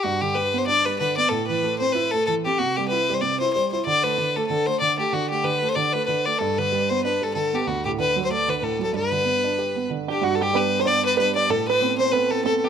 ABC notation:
X:1
M:4/4
L:1/16
Q:"Swing" 1/4=189
K:G
V:1 name="Fiddle"
F2 G2 B3 c d2 B2 B2 d2 | A2 B4 c2 B2 A2 A2 G2 | F2 G2 B3 c d2 c2 c2 c2 | d2 B4 A2 A2 c2 d2 G2 |
F2 G2 B3 c d2 B2 B2 d2 | A2 B4 c2 B2 A2 A2 G2 | F2 G2 B3 c d2 B3/2 B/2 A2 A2 | B12 z2 G2 |
F3/2 A/2 G2 B3 c d2 B2 B2 d2 | A2 B4 c2 B2 A2 A3/2 A/2 G2 |]
V:2 name="Five-string banjo"
z16 | z16 | z16 | z16 |
z16 | z16 | z16 | z12 z2 G2 |
F2 G2 B3 c d4 B2 d2 | A2 B4 c2 B2 A2 A2 G2 |]
V:3 name="Upright piano"
G,,2 D,2 G,2 B,2 D2 G,2 D,2 B,2 | A,,2 E,2 A,2 C2 E2 A,2 E,2 C2 | C,2 G,2 E2 G,2 C,2 E2 G,2 E2 | D,2 A,2 D,2 A,2 D,2 A,2 D,2 A,2 |
D,2 A,2 D,2 A,2 D,2 A,2 D,2 A,2 | G,,2 D,2 G,2 B,2 D2 G,2 D,2 B,2 | D,,2 A,,2 D,2 F,2 A,2 D,2 A,,2 F,2 | G,,2 D,2 B,2 D2 G2 B,2 D,2 D2 |
G,,4 [G,B,D]4 [G,B,D]4 [G,B,D]4 | A,,4 [A,B,C]4 [A,B,C]4 [A,B,C]4 |]